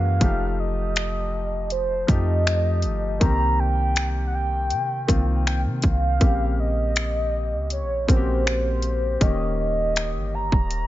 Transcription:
Already playing: 808-style bass F#2, grand piano E3 G#3 A#3 F#4, soft synth lead F5
0.20 808-style bass F1, grand piano F3 A3 D#4 G4, kick, closed hi-hat
0.59 soft synth lead D#5
0.96 finger snap, closed hi-hat
1.70 soft synth lead C5, closed hi-hat
2.07 808-style bass F2, grand piano F3 A3 D#4 G4, soft synth lead D#5, kick, closed hi-hat
2.47 finger snap, closed hi-hat
2.82 808-style bass G1, closed hi-hat
3.20 808-style bass C2, grand piano D#3 A#3 C4 G4, soft synth lead A#5, kick, closed hi-hat
3.59 soft synth lead G5
3.96 finger snap, closed hi-hat
4.27 soft synth lead F#5
4.34 soft synth lead G5
4.70 808-style bass C3, closed hi-hat
5.07 808-style bass C2, grand piano D#3 A#3 C4 F4, kick, closed hi-hat
5.47 soft synth lead G5, finger snap, closed hi-hat
5.65 808-style bass C3
5.82 808-style bass C2, soft synth lead F5, kick, closed hi-hat
6.20 808-style bass A#1, grand piano C#3 A#3 C4 G4, kick, closed hi-hat
6.60 soft synth lead D#5
6.96 finger snap, closed hi-hat
7.53 808-style bass C#2
7.70 soft synth lead C#5, closed hi-hat
7.81 808-style bass A#1
8.07 808-style bass A#1, grand piano C#3 A#3 C4 F#4, soft synth lead C5, kick, closed hi-hat
8.16 grand piano G4
8.47 finger snap, closed hi-hat
8.82 closed hi-hat
9.20 808-style bass D#1, grand piano D#3 A#3 C#4 G4, soft synth lead D#5, kick, closed hi-hat
9.59 soft synth lead D#5
9.96 finger snap, closed hi-hat
10.15 808-style bass G1
10.34 soft synth lead A#5
10.52 808-style bass D#1, kick
10.71 closed hi-hat

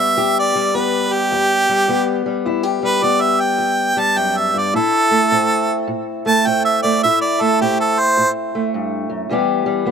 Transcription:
Already playing: steel-string acoustic guitar E2 B3 G4, harmonica E5
0.00 steel-string acoustic guitar G3
0.17 steel-string acoustic guitar E2 G4
0.39 harmonica D5
0.55 steel-string acoustic guitar G3
0.74 steel-string acoustic guitar E2 B3, harmonica B4
1.13 harmonica G4
1.31 steel-string acoustic guitar E2
1.69 steel-string acoustic guitar G3
1.88 steel-string acoustic guitar E2 B3
2.26 steel-string acoustic guitar G3
2.46 steel-string acoustic guitar E2 E4
2.63 steel-string acoustic guitar G4
2.83 steel-string acoustic guitar G3, harmonica B4
3.02 steel-string acoustic guitar E2 B3, harmonica D5
3.21 harmonica E5
3.40 harmonica G5
3.58 steel-string acoustic guitar E2
3.97 steel-string acoustic guitar G3, harmonica A5
4.16 steel-string acoustic guitar F#2, harmonica G5
4.38 harmonica E5
4.54 steel-string acoustic guitar G2
4.58 harmonica D5
4.74 steel-string acoustic guitar A2 E4, harmonica A4
5.11 steel-string acoustic guitar A3
5.31 steel-string acoustic guitar A2 C4
5.88 steel-string acoustic guitar A2
6.26 steel-string acoustic guitar A3, harmonica A5
6.46 steel-string acoustic guitar A2 C4, harmonica G5
6.65 harmonica E5
6.83 steel-string acoustic guitar A3, harmonica D5
7.03 steel-string acoustic guitar A2 E4, harmonica E5
7.21 harmonica D5
7.41 steel-string acoustic guitar A3, harmonica A4
7.61 steel-string acoustic guitar A2 C4, harmonica G4
7.80 harmonica A4
7.99 harmonica C5
8.17 steel-string acoustic guitar A2
8.55 steel-string acoustic guitar A3
8.74 steel-string acoustic guitar G2
9.09 steel-string acoustic guitar F#2
9.29 steel-string acoustic guitar E2 E3 G3 B3 G4
9.66 steel-string acoustic guitar G3
9.86 steel-string acoustic guitar E2 B3

